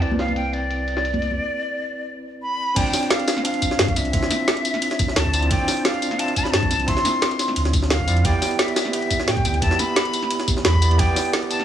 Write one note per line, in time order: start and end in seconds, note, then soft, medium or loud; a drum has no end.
0.00 1.39 C2 medium
0.00 1.38 C4 medium
0.00 1.39 E4 medium
0.00 1.39 B4 medium
0.00 0.18 D5 loud
0.00 1.40 D5 medium
0.00 ride medium
0.11 high conga medium
0.19 0.35 F5 medium
0.19 snare soft
0.19 open hi-hat medium
0.28 ride soft
0.28 high conga medium
0.36 0.55 G5 loud
0.36 ride medium
0.53 2.14 D5 loud
0.53 ride medium
0.70 ride medium
0.88 ride medium
0.97 snare soft
1.05 ride medium
1.14 ride soft
1.14 high conga medium
1.22 ride medium
1.31 high conga medium
2.42 2.78 B5 loud
2.75 2.84 D2 loud
2.75 3.42 C4 loud
2.75 3.43 D4 medium
2.75 3.43 F4 medium
2.75 3.44 D5 loud
2.75 3.12 G5 loud
2.75 kick loud
2.75 closed hi-hat loud
2.75 crash loud
2.75 ride medium
2.93 snare soft
2.93 closed hi-hat medium
2.93 open hi-hat medium
2.93 tambourine medium
3.03 ride soft
3.10 3.45 F5 medium
3.10 snare loud
3.10 closed hi-hat loud
3.10 ride medium
3.19 closed hi-hat soft
3.28 snare loud
3.28 closed hi-hat medium
3.28 ride medium
3.28 tambourine medium
3.37 snare medium
3.43 4.11 C4 medium
3.43 4.11 D4 medium
3.43 4.12 F4 medium
3.43 3.98 F5 loud
3.43 4.12 F5 medium
3.43 closed hi-hat loud
3.43 ride medium
3.54 closed hi-hat soft
3.62 kick medium
3.62 closed hi-hat medium
3.62 ride medium
3.62 tambourine medium
3.71 snare soft
3.79 3.95 G2 medium
3.79 snare loud
3.79 closed hi-hat medium
3.79 ride medium
3.88 kick loud
3.88 ride soft
3.96 4.12 C2 medium
3.96 5.18 E5 loud
3.96 snare soft
3.96 closed hi-hat medium
3.96 ride medium
3.96 tambourine medium
4.05 closed hi-hat soft
4.12 4.22 D2 loud
4.12 5.31 C4 medium
4.12 5.31 E4 medium
4.12 5.32 F4 medium
4.12 5.32 E5 medium
4.12 kick loud
4.12 closed hi-hat medium
4.12 ride medium
4.23 snare medium
4.31 snare medium
4.31 closed hi-hat medium
4.31 ride medium
4.31 tambourine medium
4.48 snare loud
4.48 closed hi-hat medium
4.48 ride medium
4.57 closed hi-hat soft
4.57 ride soft
4.65 closed hi-hat medium
4.65 ride medium
4.65 tambourine medium
4.74 snare soft
4.82 closed hi-hat loud
4.82 ride medium
4.91 snare soft
4.91 closed hi-hat soft
4.99 5.07 A1 medium
4.99 kick loud
4.99 closed hi-hat medium
4.99 ride medium
4.99 tambourine medium
5.08 snare soft
5.16 5.49 D2 loud
5.16 5.50 A5 loud
5.16 snare loud
5.16 closed hi-hat medium
5.16 ride medium
5.25 kick medium
5.33 5.48 C4 medium
5.33 5.49 E4 medium
5.33 5.49 F4 medium
5.33 5.49 D5 medium
5.33 closed hi-hat medium
5.33 ride medium
5.33 tambourine medium
5.42 closed hi-hat soft
5.49 5.59 D2 loud
5.49 6.17 C4 medium
5.49 6.17 D4 medium
5.49 6.18 F4 medium
5.49 6.18 D5 loud
5.49 5.83 G5 loud
5.49 kick loud
5.49 closed hi-hat medium
5.49 ride medium
5.68 snare soft
5.68 closed hi-hat medium
5.68 open hi-hat medium
5.68 tambourine medium
5.77 ride soft
5.85 6.21 F5 loud
5.85 snare loud
5.85 closed hi-hat medium
5.85 ride medium
5.94 closed hi-hat soft
6.02 closed hi-hat medium
6.02 ride medium
6.02 tambourine medium
6.11 snare soft
6.18 6.85 C4 medium
6.18 6.86 F4 medium
6.18 6.86 E5 medium
6.18 6.87 F5 medium
6.18 6.36 A5 loud
6.18 closed hi-hat medium
6.18 ride medium
6.28 closed hi-hat soft
6.36 6.45 A5 loud
6.36 kick medium
6.36 closed hi-hat medium
6.36 ride medium
6.36 tambourine medium
6.44 6.52 B5 medium
6.44 snare soft
6.51 6.69 G2 medium
6.51 6.89 A5 loud
6.51 snare loud
6.51 closed hi-hat medium
6.51 ride medium
6.63 kick loud
6.63 ride soft
6.71 6.86 C2 medium
6.71 snare soft
6.71 closed hi-hat medium
6.71 ride medium
6.71 tambourine medium
6.80 closed hi-hat soft
6.86 6.96 D2 loud
6.86 8.05 C4 medium
6.86 8.06 E4 medium
6.86 8.06 F4 medium
6.86 8.07 E5 medium
6.86 7.64 C6 loud
6.86 kick loud
6.86 closed hi-hat medium
6.86 ride medium
6.97 snare medium
7.05 snare medium
7.05 closed hi-hat medium
7.05 ride medium
7.05 tambourine medium
7.22 snare loud
7.22 closed hi-hat medium
7.22 ride medium
7.31 closed hi-hat soft
7.31 ride soft
7.39 snare soft
7.39 closed hi-hat medium
7.39 ride medium
7.39 tambourine medium
7.48 snare soft
7.56 8.06 D2 medium
7.56 closed hi-hat medium
7.56 ride medium
7.65 snare soft
7.65 closed hi-hat soft
7.73 kick loud
7.73 closed hi-hat medium
7.73 ride medium
7.73 tambourine medium
7.82 snare soft
7.90 8.26 F5 loud
7.90 snare loud
7.90 closed hi-hat medium
7.90 ride medium
8.00 kick medium
8.07 8.23 F2 medium
8.07 8.23 C4 medium
8.07 8.23 E4 medium
8.07 8.23 F4 medium
8.07 8.23 D5 medium
8.07 closed hi-hat medium
8.07 ride medium
8.07 tambourine medium
8.17 closed hi-hat soft
8.23 8.33 E2 loud
8.23 8.91 B3 medium
8.23 8.91 E4 medium
8.23 8.92 G4 medium
8.23 8.92 D5 loud
8.23 8.61 G5 loud
8.23 kick loud
8.23 closed hi-hat medium
8.23 ride medium
8.42 snare soft
8.42 closed hi-hat medium
8.42 open hi-hat medium
8.42 tambourine medium
8.51 ride soft
8.59 8.93 E5 loud
8.59 snare loud
8.59 closed hi-hat medium
8.59 ride medium
8.68 closed hi-hat soft
8.76 snare loud
8.76 closed hi-hat medium
8.76 ride medium
8.76 tambourine medium
8.85 snare soft
8.92 9.59 B3 medium
8.92 9.60 E4 medium
8.92 9.60 G4 medium
8.92 9.29 E5 loud
8.92 9.61 G5 medium
8.92 closed hi-hat medium
8.92 ride medium
9.02 closed hi-hat soft
9.11 kick medium
9.11 closed hi-hat medium
9.11 ride medium
9.11 tambourine medium
9.20 snare soft
9.28 9.43 A2 medium
9.28 9.61 G5 loud
9.28 snare loud
9.28 closed hi-hat medium
9.28 ride medium
9.37 kick loud
9.37 ride soft
9.45 9.60 D2 medium
9.45 snare soft
9.45 closed hi-hat medium
9.45 ride medium
9.45 tambourine medium
9.54 closed hi-hat soft
9.60 9.70 E2 loud
9.60 10.79 B3 medium
9.60 10.80 E4 medium
9.60 10.80 G4 medium
9.60 10.81 E5 medium
9.60 9.81 A5 loud
9.60 kick loud
9.60 closed hi-hat medium
9.60 ride medium
9.71 snare medium
9.79 10.48 B5 loud
9.79 snare medium
9.79 closed hi-hat medium
9.79 ride medium
9.79 tambourine medium
9.96 snare loud
9.96 closed hi-hat medium
9.96 ride medium
10.05 closed hi-hat soft
10.05 ride soft
10.13 closed hi-hat medium
10.13 ride medium
10.13 tambourine medium
10.22 snare soft
10.31 closed hi-hat medium
10.31 ride medium
10.40 snare soft
10.40 closed hi-hat soft
10.48 10.56 B1 medium
10.48 kick loud
10.48 closed hi-hat medium
10.48 ride medium
10.48 tambourine medium
10.57 snare soft
10.65 10.98 E2 loud
10.65 11.01 B5 loud
10.65 snare loud
10.65 closed hi-hat medium
10.65 ride medium
10.74 kick medium
10.81 10.97 B3 medium
10.81 10.97 E4 medium
10.81 10.97 G4 medium
10.81 10.98 D5 medium
10.81 closed hi-hat medium
10.81 ride medium
10.81 tambourine medium
10.91 closed hi-hat soft
10.98 11.07 E2 loud
10.98 11.65 B3 loud
10.98 11.65 E4 medium
10.98 11.65 G4 medium
10.98 11.65 D5 loud
10.98 11.33 G5 loud
10.98 kick loud
10.98 closed hi-hat medium
10.98 ride medium
11.16 snare soft
11.16 closed hi-hat medium
11.16 open hi-hat medium
11.16 tambourine medium
11.25 ride soft
11.33 snare loud
11.33 closed hi-hat loud
11.33 ride medium
11.43 closed hi-hat soft
11.51 11.65 A5 loud
11.51 closed hi-hat medium
11.51 ride medium
11.51 tambourine medium
11.60 snare soft